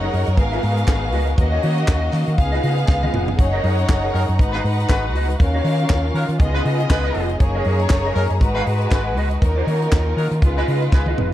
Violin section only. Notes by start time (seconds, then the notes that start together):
Already playing: D#4 C#5 F#5
0.37 B3 G#4 F5
1.37 A#3 F#4 D#5
2.38 B3 G#4 F5
3.38 D#4 C#5 F#5
4.39 D#4 B4 F#5
5.39 C#4 A#4 F5
6.39 B3 G#4 D#5
7.40 A#3 G#4 C#5
8.41 G#3 F#4 B4
9.42 D#4 A#4
10.41 G#3 F4 B4